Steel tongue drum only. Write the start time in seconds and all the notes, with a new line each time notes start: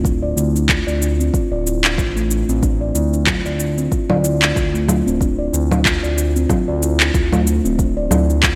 0.04 D4
0.23 D5
0.36 E4
0.55 D4
0.68 F4
0.87 D5
1.01 D4
1.19 C4
1.33 F4
1.52 D5
1.66 E4
1.84 D4
1.98 F4
2.16 A3
2.30 D4
2.49 C4
2.62 D4
2.81 D5
2.95 E4
3.14 D4
3.27 F4
3.46 D5
3.59 D4
3.78 C4
3.91 F4
4.10 D5
4.23 E4
4.42 D4
4.55 F4
4.74 A3
4.88 D4
5.06 C4
5.20 D4
5.39 D5
5.53 E4
5.71 D4
5.85 F4
6.03 D5
6.17 D4
6.36 C4
6.50 F4
6.68 D5
6.82 E4
7.00 D4
7.14 F4
7.33 A3
7.47 D4
7.65 C4
7.79 D4
7.97 D5
8.10 E4
8.29 D4
8.43 F4